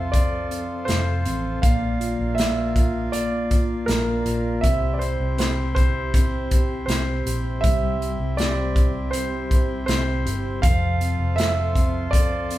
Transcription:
Already playing: F1 F3 C4 F4 A4 C5 E5
0.12 A4 D5, kick, closed hi-hat
0.51 C4, closed hi-hat
0.85 F1 A4 C5, snare, closed hi-hat
1.25 A1 C4, closed hi-hat
1.61 A#1 A#3 D4 F4 F5, kick, closed hi-hat
2.00 F4, closed hi-hat
2.19 A#1
2.35 A#3 E5, closed hi-hat
2.40 snare
2.75 F4, kick, closed hi-hat
3.12 A#3 D5, closed hi-hat
3.50 F4, kick, closed hi-hat
3.86 A#1 A#3 A#4, snare, closed hi-hat
4.25 A#1 F4, closed hi-hat
4.61 C2 C3 C4 E4 G4 E5, kick, closed hi-hat
4.94 D5
4.99 G4 C5, closed hi-hat
5.20 C2
5.38 C4 C5, snare, closed hi-hat
5.75 G4 C5, kick, closed hi-hat
6.14 C4, kick, closed hi-hat
6.51 G4, kick, closed hi-hat
6.86 C2 C4 C5, snare, closed hi-hat
7.26 A#1 G4, closed hi-hat
7.61 C2 G3 E5, kick, closed hi-hat
8.01 G4, closed hi-hat
8.19 C2
8.37 C4 D5, snare, closed hi-hat
8.76 G4, kick, closed hi-hat
9.11 C4 C5, closed hi-hat
9.50 G4, kick, closed hi-hat
9.86 C2 C4 C5, snare, closed hi-hat
10.25 G1 G4, closed hi-hat
10.62 F1 F3 F4 A4 C5 F5, kick, closed hi-hat
11.01 C4, closed hi-hat
11.20 F1
11.36 A4 E5, closed hi-hat
11.40 snare
11.76 C4, kick, closed hi-hat
12.11 A4 D5, kick, closed hi-hat
12.51 C4, closed hi-hat

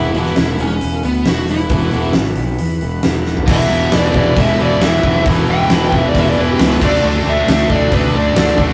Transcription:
Already playing: E1 E2 B2 E3 E4 B4 F#5
0.15 E1 E2 B2 E3 E4, open hi-hat
0.25 snare
0.36 E1 E4, snare, open hi-hat
0.59 E1 C#4, open hi-hat
0.81 E1, open hi-hat
1.03 D2 B3, open hi-hat
1.26 E1 F#4, snare, open hi-hat
1.48 E4, open hi-hat
1.69 E1 E2 B2 E3, kick, open hi-hat
1.91 E1 E2 B2 E3, open hi-hat
2.13 G#1, snare, open hi-hat
2.36 B1, open hi-hat
2.59 E2, open hi-hat
2.81 E1, open hi-hat
3.03 E1, snare, open hi-hat
3.25 snare
3.37 floor tom
3.47 E1 E2 B2 E3 E4 B4 F#5, kick, crash
3.52 E5
3.70 E1 E2 B2 E3
3.92 E1 E2 B2 E3, snare, open hi-hat
3.97 D5
4.14 E1 E2 B2 E3 D5, kick
4.36 E1 E2 B2 E3 E5, kick, open hi-hat
4.59 E1 E2 B2 E3 D5
4.81 E1 E2 B2 E3 E5, snare, open hi-hat
5.03 E1 E2 B2 E3, kick
5.26 E1 E2 B2 E3, kick, open hi-hat
5.47 E1 E2 B2 E3 G5
5.70 E1 E2 B2 E3 B5, snare, open hi-hat
5.86 G5
5.92 E1 E2 B2 E3 E5, kick
6.08 D5
6.14 E1 E2 B2 E3, kick, open hi-hat
6.19 E5
6.29 D5
6.37 E1 E2 B2 E3 B4
6.51 G4
6.59 C#2 E2 B2 E3 B4, snare, open hi-hat
6.81 D2 D3 A3 D4 A4 D5 E5, kick, crash
7.04 D2 D3 A3 D4
7.26 D2 D3 A3 D4
7.30 E5
7.47 D2 D3 A3 D4 E5, snare, open hi-hat
7.70 D2 D3 A3 D4 D5, kick
7.92 D2 D3 A3 D4 B4, kick, open hi-hat
8.14 D2 D3 A3 D4 D5
8.36 D2 D3 A3 D4 D5, snare, open hi-hat
8.57 D2 D3 A3 D4 B4, kick

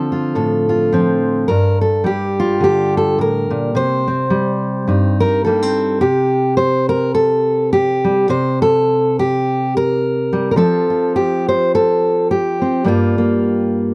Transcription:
Already playing: D3 F3 C4 A4
0.12 F4
0.35 A2 A4
0.69 F4
0.92 F3 C4
1.48 G2 A#4
1.81 A4
2.04 G3 G4
2.40 F4
2.60 D3 G4
2.97 A4
3.18 A2 A#4
3.50 A#2
3.75 C3 C5
4.07 C4
4.30 G3
4.87 G2 D#4
5.20 D#4 A#4
5.45 G3 A#3 A4
5.62 C4
6.01 C3 G4
6.57 C5
6.89 A#4
7.15 A4
7.73 G4
8.04 G3
8.29 C3 C5
8.62 A4
9.19 G4
9.77 A#4
10.33 G3
10.51 A#4
10.56 F3 C4 F4 A4
10.90 F4
11.16 G4
11.49 C5
11.75 A4
12.31 G4
12.62 C4
12.84 G2 G3 A#3 F4
13.18 A#3

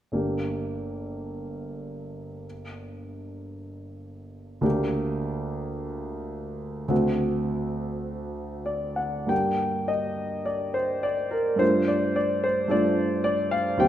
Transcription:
0.12 G1 A#3 D4 G4
4.61 D2 A#3 D4 G4
6.88 D2 A3 C4 F#4
8.66 D5
8.96 F#5
9.27 G2 A#3 D4 G4 G5
9.88 D#5
10.46 D5
10.74 C5
11.03 D5
11.31 A#4
11.56 G2 A3 D4 F4 C5
11.88 D5
12.16 D5
12.44 C5
12.68 G2 A3 D4 D5
12.72 F4
13.24 D5
13.51 F5
13.77 D#2 G3 C4 G4 G5

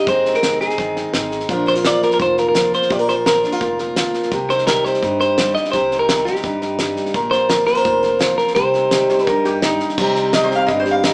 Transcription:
0.07 G#1 G#3 C4 D#4 G#4 C5, kick, snare
0.25 D#4, snare
0.34 A#4, snare
0.43 F1 G#3, snare, hi-hat pedal
0.61 D#4 G#4, snare
0.70 snare
0.78 G1 D#3 D#4, kick, snare
0.96 D#4, snare
1.13 G#1 G#3 D#4, snare, hi-hat pedal
1.31 snare
1.40 snare
1.49 A#1 A#2 F3 D4 F4 A#4, kick, snare
1.66 D4 C5, snare
1.75 F4, snare
1.85 F3 D5, snare, hi-hat pedal
2.02 F4 A#4, snare
2.11 A#4, snare
2.20 F1 A#2 F4 C5, kick, snare
2.37 F4 A#4, snare
2.49 A#4
2.55 F3 F4, snare, hi-hat pedal
2.73 C5, snare
2.82 snare
2.90 A#1 A#2 G4 D5, kick, snare
2.99 A#4
3.09 F4 C5, snare
3.26 F3 A#4, snare, hi-hat pedal
3.44 D4, snare
3.52 F4, snare
3.61 F1 A#2 F4, kick, snare
3.79 A#4, snare
3.96 F3 F4, snare, hi-hat pedal
4.14 snare
4.23 snare
4.32 C2 C3 G4, kick, snare
4.49 D#4 C5, snare
4.58 snare
4.67 G3 A#4, snare, hi-hat pedal
4.84 G4 C5, snare
4.94 snare
5.02 G2 D#4, kick, snare
5.20 G4 C5, snare
5.38 G3 D#4, snare, hi-hat pedal
5.55 D#5, snare
5.65 snare
5.72 C2 C3 G4 C5, kick, snare
5.91 D#4, snare
5.99 A#4
6.09 G3, snare, hi-hat pedal
6.25 D#4 G4, snare
6.36 snare
6.43 G2 D#4, kick, snare
6.62 D#4, snare
6.79 G3 D#4, snare, hi-hat pedal
6.96 snare
7.06 snare
7.14 A#1 A#2 A#4, kick, snare
7.31 F4 C5, snare
7.49 F3 A#4, snare, hi-hat pedal
7.66 G4 C5, snare
7.75 A#4, snare
7.83 F1 A#2 F4, kick, snare
8.03 A#4, snare
8.19 F3 F4, snare, hi-hat pedal
8.38 A#4, snare
8.48 snare
8.55 C2 C3 G4 C5, kick, snare
8.74 D#4, snare
8.91 G3, snare, hi-hat pedal
9.09 G4 C5, snare
9.18 snare
9.27 G2 D#4 A#4, kick, snare
9.45 G4, snare
9.62 G3 D#4, snare, hi-hat pedal
9.80 snare
9.89 snare
9.98 C2 C3 G3 C4 D#4 G4, kick, snare, crash
10.16 D#4, snare
10.33 G3 D#5, snare, hi-hat pedal
10.44 C5
10.51 G4, snare
10.55 F5
10.67 G1 G2 D#4 D#5, kick, snare
10.80 C5
10.86 G4, snare
10.91 F5
11.03 G3 D#4 D#5, snare, hi-hat pedal

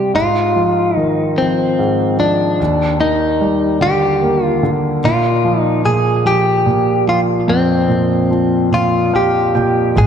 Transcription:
Already playing: C3 G3 G4
0.14 G#2 F4
0.56 F3
0.97 D#3 D#4
1.38 F3 C4
1.79 G#2
2.19 F3 D4
2.60 D#2
3.01 D#3 D#4
3.41 G3
3.81 D3 G4
4.22 A#3
4.44 F4
4.63 D3
5.04 A#2 F4
5.45 F3
5.60 D#4
5.85 A#2 G#4
6.25 F3 G4
6.66 A#2
7.07 F3 F4
7.48 F2 C4
7.89 A#2
8.31 F3
8.71 A#2 F4
9.13 F3 G4 F5
9.55 A#2 G5
9.96 G#1 G#3 G#4

